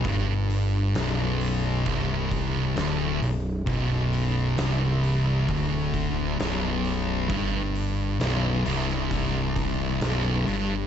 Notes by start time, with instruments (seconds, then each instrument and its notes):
0.05 picked electric bass G1, distorted electric guitar G2, kick, open hi-hat
0.50 open hi-hat
0.95 picked electric bass B0, distorted electric guitar B1, snare, open hi-hat
1.41 open hi-hat
1.86 picked electric bass C1, distorted electric guitar C2, kick, open hi-hat
2.31 kick, open hi-hat
2.76 picked electric bass D1, distorted electric guitar D2, snare, open hi-hat
3.22 picked electric bass B0, distorted electric guitar B1, open hi-hat
3.66 picked electric bass B0, distorted electric guitar B1, kick, open hi-hat
4.13 open hi-hat
4.58 picked electric bass C1, distorted electric guitar C2, snare, open hi-hat
5.04 open hi-hat
5.48 picked electric bass D1, distorted electric guitar D2, kick, open hi-hat
5.94 kick, open hi-hat
6.38 picked electric bass B0, distorted electric guitar B1, snare, open hi-hat
6.85 open hi-hat
7.29 picked electric bass G1, distorted electric guitar G2, kick, open hi-hat
7.75 open hi-hat
8.20 picked electric bass B0, distorted electric guitar B1, snare, open hi-hat
8.65 picked electric bass C1, distorted electric guitar C2, open hi-hat
8.89 snare
9.11 kick, open hi-hat
9.56 kick, open hi-hat
10.01 picked electric bass B0, distorted electric guitar B1, snare, open hi-hat
10.46 picked electric bass G1, distorted electric guitar G2, open hi-hat